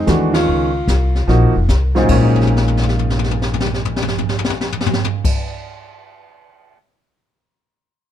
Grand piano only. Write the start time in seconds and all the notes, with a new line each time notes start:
Already playing: G#3 C4
0.06 E3 A3 D4 F#4
0.33 D#3 G#3 C#4 F4
1.28 F3 A#3 D#4 F#4
1.95 G#2 A#2 C#3 F#3 D#4 C5
2.04 G#3
2.10 A#3 C#4
2.16 C#4
2.22 D#4